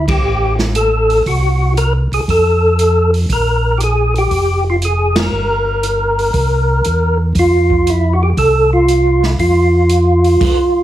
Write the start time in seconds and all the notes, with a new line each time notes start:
Already playing: D2
0.08 G4, kick, ride
0.22 A1
0.59 snare
0.75 A4, closed hi-hat
1.10 open hi-hat
1.26 C2 F#4, kick, open hi-hat
1.77 A#4, closed hi-hat
2.12 C2 G#4, open hi-hat
2.28 F2 A4, kick, open hi-hat
2.79 closed hi-hat
3.14 open hi-hat
3.29 A#1 A#4, kick, open hi-hat
3.78 G4, closed hi-hat
3.83 G#4
4.16 G4, open hi-hat
4.31 F1, kick, open hi-hat
4.70 F4
4.82 G#4, closed hi-hat
5.16 A#4, snare, ride
5.32 G1
5.83 closed hi-hat
6.19 open hi-hat
6.34 C2, kick, open hi-hat
6.85 E2, closed hi-hat
7.35 F2, kick, open hi-hat
7.39 F4
7.70 kick
7.87 E4, closed hi-hat
8.13 F#4
8.23 G4
8.37 C2 A4, kick, open hi-hat
8.73 F4
8.88 closed hi-hat
9.23 E4, snare
9.39 F2 F4, kick, open hi-hat
9.89 closed hi-hat
10.24 open hi-hat
10.41 kick, open hi-hat, crash